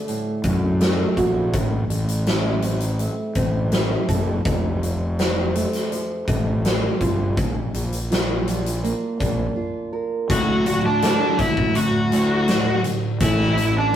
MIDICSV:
0, 0, Header, 1, 5, 480
1, 0, Start_track
1, 0, Tempo, 729040
1, 1013, Time_signature, 4, 2, 24, 8
1, 9191, End_track
2, 0, Start_track
2, 0, Title_t, "Lead electric guitar"
2, 0, Program_c, 0, 29
2, 6784, Note_on_c, 0, 66, 82
2, 6787, Note_on_c, 0, 78, 99
2, 7116, Note_off_c, 0, 66, 0
2, 7116, Note_off_c, 0, 78, 0
2, 7144, Note_on_c, 0, 62, 61
2, 7147, Note_on_c, 0, 74, 75
2, 7252, Note_off_c, 0, 74, 0
2, 7253, Note_off_c, 0, 62, 0
2, 7263, Note_on_c, 0, 62, 58
2, 7264, Note_on_c, 0, 74, 75
2, 7484, Note_off_c, 0, 62, 0
2, 7503, Note_on_c, 0, 76, 87
2, 7507, Note_off_c, 0, 74, 0
2, 7509, Note_on_c, 0, 64, 71
2, 7724, Note_off_c, 0, 76, 0
2, 7725, Note_off_c, 0, 64, 0
2, 7745, Note_on_c, 0, 66, 68
2, 7747, Note_on_c, 0, 78, 74
2, 8434, Note_off_c, 0, 78, 0
2, 8435, Note_off_c, 0, 66, 0
2, 8705, Note_on_c, 0, 76, 92
2, 8707, Note_on_c, 0, 64, 67
2, 9035, Note_off_c, 0, 64, 0
2, 9036, Note_off_c, 0, 76, 0
2, 9069, Note_on_c, 0, 62, 59
2, 9074, Note_on_c, 0, 74, 67
2, 9175, Note_off_c, 0, 62, 0
2, 9181, Note_off_c, 0, 74, 0
2, 9191, End_track
3, 0, Start_track
3, 0, Title_t, "Steel-string acoustic guitar"
3, 0, Program_c, 1, 25
3, 0, Note_on_c, 1, 38, 66
3, 0, Note_on_c, 1, 50, 66
3, 0, Note_on_c, 1, 57, 65
3, 52, Note_on_c, 1, 45, 70
3, 280, Note_off_c, 1, 50, 0
3, 288, Note_on_c, 1, 50, 61
3, 293, Note_off_c, 1, 38, 0
3, 526, Note_off_c, 1, 57, 0
3, 528, Note_on_c, 1, 57, 63
3, 771, Note_on_c, 1, 66, 65
3, 999, Note_off_c, 1, 45, 0
3, 1007, Note_on_c, 1, 45, 71
3, 1010, Note_off_c, 1, 50, 0
3, 1012, Note_off_c, 1, 66, 0
3, 1493, Note_on_c, 1, 64, 69
3, 1731, Note_off_c, 1, 57, 0
3, 1734, Note_on_c, 1, 60, 57
3, 1972, Note_on_c, 1, 57, 66
3, 2207, Note_off_c, 1, 60, 0
3, 2209, Note_off_c, 1, 45, 0
3, 2215, Note_on_c, 1, 60, 66
3, 2443, Note_off_c, 1, 64, 0
3, 2451, Note_on_c, 1, 64, 66
3, 2691, Note_on_c, 1, 69, 68
3, 2932, Note_off_c, 1, 57, 0
3, 2932, Note_off_c, 1, 64, 0
3, 2932, Note_off_c, 1, 69, 0
3, 2932, Note_on_c, 1, 41, 74
3, 2934, Note_off_c, 1, 60, 0
3, 3415, Note_on_c, 1, 60, 69
3, 3651, Note_on_c, 1, 57, 64
3, 3896, Note_on_c, 1, 53, 70
3, 4128, Note_off_c, 1, 57, 0
3, 4133, Note_off_c, 1, 41, 0
3, 4136, Note_on_c, 1, 57, 67
3, 4365, Note_off_c, 1, 60, 0
3, 4373, Note_on_c, 1, 60, 58
3, 4612, Note_on_c, 1, 65, 62
3, 4853, Note_off_c, 1, 65, 0
3, 4854, Note_off_c, 1, 60, 0
3, 4856, Note_off_c, 1, 53, 0
3, 4856, Note_off_c, 1, 57, 0
3, 4856, Note_on_c, 1, 46, 65
3, 5337, Note_on_c, 1, 65, 64
3, 5575, Note_on_c, 1, 62, 58
3, 5815, Note_on_c, 1, 58, 73
3, 6046, Note_off_c, 1, 62, 0
3, 6054, Note_on_c, 1, 62, 69
3, 6057, Note_off_c, 1, 46, 0
3, 6286, Note_off_c, 1, 65, 0
3, 6294, Note_on_c, 1, 65, 61
3, 6536, Note_on_c, 1, 70, 61
3, 6775, Note_off_c, 1, 62, 0
3, 6775, Note_off_c, 1, 65, 0
3, 6775, Note_on_c, 1, 38, 82
3, 6776, Note_off_c, 1, 58, 0
3, 6776, Note_off_c, 1, 70, 0
3, 6778, Note_on_c, 1, 45, 80
3, 6781, Note_on_c, 1, 50, 83
3, 7001, Note_off_c, 1, 38, 0
3, 7003, Note_off_c, 1, 45, 0
3, 7005, Note_off_c, 1, 50, 0
3, 7018, Note_on_c, 1, 38, 64
3, 7020, Note_on_c, 1, 45, 81
3, 7234, Note_off_c, 1, 38, 0
3, 7235, Note_off_c, 1, 45, 0
3, 7258, Note_on_c, 1, 38, 90
3, 7260, Note_on_c, 1, 45, 99
3, 7265, Note_on_c, 1, 50, 98
3, 7483, Note_off_c, 1, 38, 0
3, 7484, Note_off_c, 1, 45, 0
3, 7486, Note_off_c, 1, 50, 0
3, 7499, Note_on_c, 1, 38, 66
3, 7503, Note_on_c, 1, 45, 69
3, 7714, Note_off_c, 1, 38, 0
3, 7716, Note_off_c, 1, 45, 0
3, 7743, Note_on_c, 1, 38, 68
3, 7745, Note_on_c, 1, 45, 82
3, 7956, Note_off_c, 1, 38, 0
3, 7957, Note_off_c, 1, 45, 0
3, 7980, Note_on_c, 1, 38, 97
3, 7984, Note_on_c, 1, 45, 102
3, 7984, Note_on_c, 1, 50, 98
3, 8204, Note_off_c, 1, 38, 0
3, 8206, Note_off_c, 1, 45, 0
3, 8206, Note_off_c, 1, 50, 0
3, 8216, Note_on_c, 1, 38, 71
3, 8219, Note_on_c, 1, 45, 81
3, 8432, Note_off_c, 1, 38, 0
3, 8434, Note_off_c, 1, 45, 0
3, 8458, Note_on_c, 1, 38, 65
3, 8459, Note_on_c, 1, 45, 70
3, 8673, Note_off_c, 1, 38, 0
3, 8673, Note_off_c, 1, 45, 0
3, 8697, Note_on_c, 1, 45, 86
3, 8700, Note_on_c, 1, 52, 91
3, 8702, Note_on_c, 1, 57, 92
3, 8922, Note_off_c, 1, 45, 0
3, 8924, Note_off_c, 1, 52, 0
3, 8925, Note_off_c, 1, 57, 0
3, 8936, Note_on_c, 1, 45, 72
3, 8939, Note_on_c, 1, 52, 80
3, 9152, Note_off_c, 1, 45, 0
3, 9153, Note_off_c, 1, 52, 0
3, 9191, End_track
4, 0, Start_track
4, 0, Title_t, "Fingered electric bass"
4, 0, Program_c, 2, 33
4, 292, Note_on_c, 2, 42, 93
4, 678, Note_off_c, 2, 42, 0
4, 770, Note_on_c, 2, 34, 82
4, 1012, Note_off_c, 2, 34, 0
4, 1012, Note_on_c, 2, 33, 92
4, 1205, Note_off_c, 2, 33, 0
4, 1239, Note_on_c, 2, 33, 85
4, 2017, Note_off_c, 2, 33, 0
4, 2208, Note_on_c, 2, 33, 89
4, 2596, Note_off_c, 2, 33, 0
4, 2690, Note_on_c, 2, 30, 96
4, 2884, Note_off_c, 2, 30, 0
4, 2933, Note_on_c, 2, 29, 91
4, 3706, Note_off_c, 2, 29, 0
4, 4133, Note_on_c, 2, 33, 93
4, 4520, Note_off_c, 2, 33, 0
4, 4611, Note_on_c, 2, 31, 86
4, 4855, Note_off_c, 2, 31, 0
4, 4855, Note_on_c, 2, 34, 96
4, 5048, Note_off_c, 2, 34, 0
4, 5093, Note_on_c, 2, 34, 83
4, 5867, Note_off_c, 2, 34, 0
4, 6057, Note_on_c, 2, 34, 95
4, 6250, Note_off_c, 2, 34, 0
4, 6779, Note_on_c, 2, 38, 100
4, 7358, Note_off_c, 2, 38, 0
4, 7499, Note_on_c, 2, 38, 73
4, 7595, Note_off_c, 2, 38, 0
4, 7620, Note_on_c, 2, 38, 85
4, 8391, Note_off_c, 2, 38, 0
4, 8694, Note_on_c, 2, 33, 98
4, 9191, Note_off_c, 2, 33, 0
4, 9191, End_track
5, 0, Start_track
5, 0, Title_t, "Drums"
5, 52, Note_on_c, 9, 42, 46
5, 118, Note_off_c, 9, 42, 0
5, 286, Note_on_c, 9, 42, 58
5, 289, Note_on_c, 9, 36, 89
5, 352, Note_off_c, 9, 42, 0
5, 355, Note_off_c, 9, 36, 0
5, 531, Note_on_c, 9, 42, 59
5, 537, Note_on_c, 9, 38, 109
5, 596, Note_off_c, 9, 42, 0
5, 602, Note_off_c, 9, 38, 0
5, 771, Note_on_c, 9, 36, 69
5, 773, Note_on_c, 9, 42, 61
5, 837, Note_off_c, 9, 36, 0
5, 838, Note_off_c, 9, 42, 0
5, 1010, Note_on_c, 9, 42, 69
5, 1012, Note_on_c, 9, 36, 111
5, 1076, Note_off_c, 9, 42, 0
5, 1077, Note_off_c, 9, 36, 0
5, 1252, Note_on_c, 9, 42, 64
5, 1318, Note_off_c, 9, 42, 0
5, 1373, Note_on_c, 9, 42, 61
5, 1439, Note_off_c, 9, 42, 0
5, 1491, Note_on_c, 9, 42, 56
5, 1497, Note_on_c, 9, 38, 109
5, 1557, Note_off_c, 9, 42, 0
5, 1563, Note_off_c, 9, 38, 0
5, 1727, Note_on_c, 9, 42, 77
5, 1793, Note_off_c, 9, 42, 0
5, 1846, Note_on_c, 9, 42, 62
5, 1912, Note_off_c, 9, 42, 0
5, 1969, Note_on_c, 9, 42, 58
5, 2035, Note_off_c, 9, 42, 0
5, 2206, Note_on_c, 9, 42, 66
5, 2209, Note_on_c, 9, 36, 79
5, 2272, Note_off_c, 9, 42, 0
5, 2275, Note_off_c, 9, 36, 0
5, 2447, Note_on_c, 9, 42, 62
5, 2453, Note_on_c, 9, 38, 109
5, 2513, Note_off_c, 9, 42, 0
5, 2519, Note_off_c, 9, 38, 0
5, 2691, Note_on_c, 9, 36, 77
5, 2695, Note_on_c, 9, 42, 58
5, 2757, Note_off_c, 9, 36, 0
5, 2761, Note_off_c, 9, 42, 0
5, 2932, Note_on_c, 9, 36, 113
5, 2934, Note_on_c, 9, 42, 56
5, 2998, Note_off_c, 9, 36, 0
5, 3000, Note_off_c, 9, 42, 0
5, 3180, Note_on_c, 9, 42, 50
5, 3245, Note_off_c, 9, 42, 0
5, 3416, Note_on_c, 9, 42, 55
5, 3422, Note_on_c, 9, 38, 113
5, 3482, Note_off_c, 9, 42, 0
5, 3488, Note_off_c, 9, 38, 0
5, 3657, Note_on_c, 9, 42, 69
5, 3723, Note_off_c, 9, 42, 0
5, 3774, Note_on_c, 9, 42, 56
5, 3780, Note_on_c, 9, 38, 31
5, 3839, Note_off_c, 9, 42, 0
5, 3845, Note_off_c, 9, 38, 0
5, 3897, Note_on_c, 9, 42, 51
5, 3963, Note_off_c, 9, 42, 0
5, 4133, Note_on_c, 9, 36, 84
5, 4135, Note_on_c, 9, 42, 60
5, 4199, Note_off_c, 9, 36, 0
5, 4201, Note_off_c, 9, 42, 0
5, 4376, Note_on_c, 9, 42, 57
5, 4382, Note_on_c, 9, 38, 102
5, 4442, Note_off_c, 9, 42, 0
5, 4448, Note_off_c, 9, 38, 0
5, 4614, Note_on_c, 9, 36, 81
5, 4616, Note_on_c, 9, 42, 57
5, 4680, Note_off_c, 9, 36, 0
5, 4681, Note_off_c, 9, 42, 0
5, 4855, Note_on_c, 9, 36, 112
5, 4855, Note_on_c, 9, 42, 65
5, 4921, Note_off_c, 9, 36, 0
5, 4921, Note_off_c, 9, 42, 0
5, 5099, Note_on_c, 9, 42, 56
5, 5164, Note_off_c, 9, 42, 0
5, 5218, Note_on_c, 9, 42, 60
5, 5284, Note_off_c, 9, 42, 0
5, 5344, Note_on_c, 9, 42, 66
5, 5350, Note_on_c, 9, 38, 111
5, 5410, Note_off_c, 9, 42, 0
5, 5416, Note_off_c, 9, 38, 0
5, 5580, Note_on_c, 9, 42, 74
5, 5646, Note_off_c, 9, 42, 0
5, 5703, Note_on_c, 9, 42, 64
5, 5769, Note_off_c, 9, 42, 0
5, 5822, Note_on_c, 9, 42, 53
5, 5888, Note_off_c, 9, 42, 0
5, 6060, Note_on_c, 9, 36, 87
5, 6062, Note_on_c, 9, 42, 59
5, 6126, Note_off_c, 9, 36, 0
5, 6128, Note_off_c, 9, 42, 0
5, 6780, Note_on_c, 9, 36, 110
5, 6781, Note_on_c, 9, 42, 95
5, 6846, Note_off_c, 9, 36, 0
5, 6847, Note_off_c, 9, 42, 0
5, 7018, Note_on_c, 9, 42, 64
5, 7084, Note_off_c, 9, 42, 0
5, 7258, Note_on_c, 9, 42, 91
5, 7264, Note_on_c, 9, 38, 100
5, 7324, Note_off_c, 9, 42, 0
5, 7330, Note_off_c, 9, 38, 0
5, 7498, Note_on_c, 9, 36, 98
5, 7498, Note_on_c, 9, 42, 76
5, 7564, Note_off_c, 9, 36, 0
5, 7564, Note_off_c, 9, 42, 0
5, 7619, Note_on_c, 9, 36, 81
5, 7685, Note_off_c, 9, 36, 0
5, 7737, Note_on_c, 9, 42, 89
5, 7803, Note_off_c, 9, 42, 0
5, 7979, Note_on_c, 9, 42, 72
5, 8045, Note_off_c, 9, 42, 0
5, 8215, Note_on_c, 9, 42, 83
5, 8221, Note_on_c, 9, 38, 103
5, 8281, Note_off_c, 9, 42, 0
5, 8287, Note_off_c, 9, 38, 0
5, 8455, Note_on_c, 9, 42, 75
5, 8521, Note_off_c, 9, 42, 0
5, 8693, Note_on_c, 9, 42, 109
5, 8695, Note_on_c, 9, 36, 102
5, 8759, Note_off_c, 9, 42, 0
5, 8761, Note_off_c, 9, 36, 0
5, 8823, Note_on_c, 9, 38, 29
5, 8889, Note_off_c, 9, 38, 0
5, 8938, Note_on_c, 9, 42, 71
5, 9004, Note_off_c, 9, 42, 0
5, 9191, End_track
0, 0, End_of_file